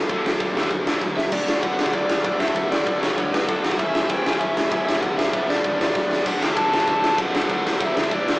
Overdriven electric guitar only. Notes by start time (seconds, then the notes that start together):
Already playing: A4
1.17 E5
1.32 D5
1.63 F#5
1.95 D5
2.25 D5
2.39 E5
2.72 D5
3.01 C#5
3.32 B4
3.47 A4
3.64 F#5
3.79 E5
4.11 G5
4.40 E5
4.71 E5
4.85 E5
5.01 F#5
5.18 E5
5.49 D5
5.80 D5
6.26 F#5
6.43 G5
6.57 A5
6.89 A5
7.21 F#5
7.52 F#5
7.67 F#5
7.84 E5
8.14 D5